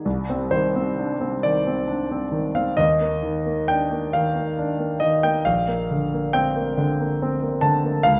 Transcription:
grand piano
0.05 C2
0.30 C4
0.51 D#3 C5
0.75 C4
0.99 D4
1.21 C4
1.43 D#3 D5
1.67 C4
1.88 D4
2.11 C4
2.32 D#3
2.55 C4 F5
2.77 D#2 D#5
3.01 A#3
3.23 D#3
3.46 A#3
3.68 D4 G5
3.92 A#3
4.13 D#3 F5
4.35 A#3
4.59 D4
4.79 A#3
5.00 D#3 D#5
5.23 A#3 G5
5.45 A#1 F5
5.68 A#3
5.91 D3
6.13 A#3
6.33 C4 G5
6.56 A#3
6.77 D3
7.00 A#3
7.22 C4
7.42 A#3
7.61 D3 A5
7.84 A#3
8.03 C#2 F5

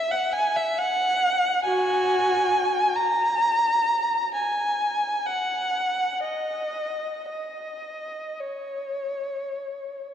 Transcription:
violin
0.12 F#5
0.33 G#5
0.56 E5
0.79 F#5
1.65 F#4 G#5
2.96 A#5
4.35 G#5
5.27 F#5
6.24 D#5
7.30 D#5
8.40 C#5

